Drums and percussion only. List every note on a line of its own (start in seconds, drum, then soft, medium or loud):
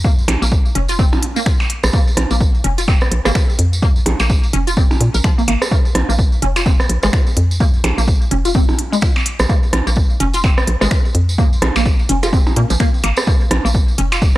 0.04 kick loud
0.04 tambourine medium
0.19 tambourine soft
0.28 closed hi-hat medium
0.28 percussion blips medium
0.28 percussion blips loud
0.28 percussion blips medium
0.42 tambourine medium
0.52 kick loud
0.52 tambourine medium
0.65 tambourine soft
0.75 closed hi-hat medium
0.88 closed hi-hat soft
0.88 tambourine medium
0.99 kick loud
0.99 tambourine medium
1.13 tambourine soft
1.13 percussion blips medium
1.23 closed hi-hat medium
1.36 tambourine medium
1.46 finger snap loud
1.46 kick loud
1.46 tambourine medium
1.60 tambourine soft
1.60 percussion blips medium
1.70 closed hi-hat medium
1.83 cross-stick medium
1.83 tambourine medium
1.83 percussion blips medium
1.93 kick loud
1.93 tambourine medium
2.08 tambourine soft
2.17 cross-stick medium
2.17 closed hi-hat loud
2.17 percussion blips loud
2.31 tambourine medium
2.41 kick loud
2.41 tambourine medium
2.55 tambourine soft
2.64 closed hi-hat medium
2.78 closed hi-hat soft
2.78 tambourine medium
2.88 kick loud
2.88 tambourine medium
2.88 percussion blips medium
3.01 cross-stick medium
3.01 tambourine soft
3.12 closed hi-hat loud
3.25 cross-stick medium
3.25 tambourine medium
3.25 percussion blips medium
3.35 finger snap loud
3.35 kick loud
3.35 tambourine medium
3.50 tambourine soft
3.59 closed hi-hat medium
3.73 tambourine medium
3.82 kick loud
3.82 tambourine medium
3.96 tambourine soft
4.06 closed hi-hat loud
4.06 percussion blips medium
4.20 tambourine medium
4.20 percussion blips medium
4.29 kick loud
4.29 tambourine medium
4.43 tambourine soft
4.53 closed hi-hat medium
4.67 closed hi-hat soft
4.67 tambourine medium
4.77 kick loud
4.77 tambourine medium
4.91 tambourine soft
4.91 percussion blips medium
5.01 closed hi-hat medium
5.14 tambourine medium
5.24 finger snap loud
5.24 kick loud
5.24 tambourine medium
5.39 tambourine soft
5.48 closed hi-hat medium
5.48 percussion blips medium
5.62 cross-stick medium
5.62 tambourine medium
5.62 percussion blips medium
5.71 kick loud
5.71 tambourine medium
5.85 tambourine soft
5.95 cross-stick medium
5.95 closed hi-hat medium
5.95 percussion blips medium
6.10 tambourine medium
6.19 kick loud
6.19 tambourine medium
6.32 tambourine soft
6.42 closed hi-hat medium
6.56 closed hi-hat soft
6.56 tambourine medium
6.56 percussion blips medium
6.66 kick loud
6.66 tambourine medium
6.80 cross-stick medium
6.80 tambourine soft
6.90 closed hi-hat medium
7.03 cross-stick medium
7.03 tambourine medium
7.03 percussion blips medium
7.13 finger snap loud
7.13 kick loud
7.13 tambourine medium
7.27 tambourine soft
7.37 closed hi-hat medium
7.51 tambourine medium
7.60 kick loud
7.60 tambourine medium
7.74 tambourine soft
7.84 closed hi-hat medium
7.84 percussion blips medium
7.98 tambourine medium
8.08 kick loud
8.08 tambourine medium
8.22 tambourine soft
8.31 closed hi-hat medium
8.45 closed hi-hat soft
8.45 tambourine medium
8.55 kick loud
8.69 tambourine soft
8.69 percussion blips medium
8.79 closed hi-hat medium
8.93 tambourine medium
9.01 finger snap loud
9.01 kick loud
9.01 tambourine medium
9.16 tambourine soft
9.16 percussion blips medium
9.26 closed hi-hat medium
9.39 cross-stick medium
9.39 tambourine medium
9.39 percussion blips medium
9.49 kick loud
9.49 tambourine medium
9.63 tambourine soft
9.73 cross-stick medium
9.73 closed hi-hat medium
9.73 percussion blips medium
9.87 tambourine medium
9.96 kick loud
9.96 tambourine medium
10.10 tambourine soft
10.20 closed hi-hat medium
10.34 closed hi-hat soft
10.34 tambourine medium
10.44 kick loud
10.44 tambourine medium
10.44 percussion blips medium
10.58 cross-stick medium
10.58 tambourine soft
10.67 closed hi-hat medium
10.81 cross-stick medium
10.81 tambourine medium
10.81 percussion blips medium
10.91 finger snap loud
10.91 kick loud
11.05 tambourine soft
11.15 closed hi-hat medium
11.29 tambourine medium
11.38 kick loud
11.38 tambourine medium
11.53 tambourine soft
11.62 cross-stick medium
11.62 closed hi-hat medium
11.62 percussion blips medium
11.62 percussion blips loud
11.76 tambourine medium
11.76 percussion blips medium
11.86 kick loud
11.86 tambourine medium
11.99 tambourine soft
12.09 closed hi-hat medium
12.23 closed hi-hat soft
12.23 tambourine medium
12.23 percussion blips medium
12.33 kick loud
12.33 tambourine medium
12.47 tambourine soft
12.47 percussion blips medium
12.56 closed hi-hat medium
12.70 closed hi-hat soft
12.70 tambourine medium
12.80 finger snap loud
12.80 kick loud
12.80 tambourine medium
12.94 tambourine soft
13.04 closed hi-hat medium
13.04 percussion blips medium
13.17 cross-stick medium
13.17 tambourine medium
13.17 percussion blips medium
13.27 kick loud
13.27 tambourine medium
13.41 tambourine soft
13.51 cross-stick medium
13.51 closed hi-hat medium
13.51 percussion blips loud
13.66 tambourine medium
13.75 kick loud
13.75 tambourine medium
13.88 tambourine soft
13.98 closed hi-hat medium
14.12 closed hi-hat soft
14.12 tambourine medium
14.12 percussion blips medium
14.22 kick loud
14.22 tambourine medium